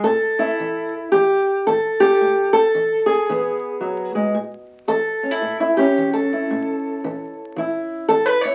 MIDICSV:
0, 0, Header, 1, 2, 480
1, 0, Start_track
1, 0, Key_signature, 3, "major"
1, 0, Tempo, 535236
1, 51, Time_signature, 4, 2, 24, 8
1, 7667, End_track
2, 0, Start_track
2, 0, Title_t, "Steel-string acoustic guitar"
2, 0, Program_c, 0, 25
2, 33, Note_on_c, 0, 69, 107
2, 44, Note_on_c, 0, 45, 71
2, 350, Note_on_c, 0, 64, 88
2, 496, Note_off_c, 0, 45, 0
2, 534, Note_on_c, 0, 52, 57
2, 839, Note_off_c, 0, 69, 0
2, 981, Note_off_c, 0, 52, 0
2, 999, Note_off_c, 0, 64, 0
2, 1002, Note_on_c, 0, 67, 99
2, 1021, Note_on_c, 0, 52, 67
2, 1465, Note_off_c, 0, 52, 0
2, 1489, Note_off_c, 0, 67, 0
2, 1495, Note_on_c, 0, 69, 89
2, 1511, Note_on_c, 0, 52, 58
2, 1795, Note_on_c, 0, 67, 91
2, 1950, Note_off_c, 0, 52, 0
2, 1981, Note_on_c, 0, 45, 68
2, 2258, Note_off_c, 0, 69, 0
2, 2269, Note_on_c, 0, 69, 92
2, 2283, Note_off_c, 0, 67, 0
2, 2426, Note_off_c, 0, 45, 0
2, 2463, Note_on_c, 0, 52, 58
2, 2745, Note_on_c, 0, 68, 80
2, 2907, Note_off_c, 0, 52, 0
2, 2926, Note_off_c, 0, 69, 0
2, 2954, Note_on_c, 0, 52, 74
2, 2961, Note_on_c, 0, 59, 46
2, 3393, Note_off_c, 0, 52, 0
2, 3411, Note_on_c, 0, 54, 54
2, 3718, Note_off_c, 0, 54, 0
2, 3721, Note_on_c, 0, 56, 59
2, 3884, Note_off_c, 0, 68, 0
2, 3890, Note_off_c, 0, 59, 0
2, 3892, Note_off_c, 0, 56, 0
2, 3898, Note_on_c, 0, 45, 67
2, 4344, Note_off_c, 0, 45, 0
2, 4373, Note_on_c, 0, 52, 57
2, 4378, Note_on_c, 0, 69, 105
2, 4691, Note_on_c, 0, 61, 43
2, 4762, Note_off_c, 0, 61, 0
2, 4762, Note_on_c, 0, 64, 40
2, 4822, Note_off_c, 0, 52, 0
2, 4858, Note_on_c, 0, 45, 65
2, 5011, Note_off_c, 0, 64, 0
2, 5016, Note_off_c, 0, 69, 0
2, 5024, Note_on_c, 0, 64, 68
2, 5174, Note_on_c, 0, 67, 80
2, 5180, Note_off_c, 0, 64, 0
2, 5188, Note_on_c, 0, 61, 49
2, 5304, Note_off_c, 0, 45, 0
2, 5359, Note_on_c, 0, 52, 58
2, 5495, Note_off_c, 0, 67, 0
2, 5501, Note_on_c, 0, 69, 80
2, 5674, Note_on_c, 0, 64, 48
2, 5794, Note_off_c, 0, 52, 0
2, 5833, Note_on_c, 0, 45, 69
2, 6271, Note_off_c, 0, 45, 0
2, 6316, Note_on_c, 0, 52, 58
2, 6751, Note_off_c, 0, 52, 0
2, 6784, Note_on_c, 0, 52, 71
2, 6794, Note_off_c, 0, 64, 0
2, 6798, Note_on_c, 0, 64, 54
2, 6935, Note_off_c, 0, 69, 0
2, 7224, Note_off_c, 0, 52, 0
2, 7251, Note_on_c, 0, 69, 96
2, 7261, Note_on_c, 0, 52, 58
2, 7404, Note_off_c, 0, 69, 0
2, 7404, Note_on_c, 0, 71, 81
2, 7431, Note_off_c, 0, 61, 0
2, 7543, Note_off_c, 0, 71, 0
2, 7543, Note_on_c, 0, 73, 94
2, 7574, Note_off_c, 0, 64, 0
2, 7578, Note_on_c, 0, 64, 47
2, 7667, Note_off_c, 0, 52, 0
2, 7667, Note_off_c, 0, 64, 0
2, 7667, Note_off_c, 0, 73, 0
2, 7667, End_track
0, 0, End_of_file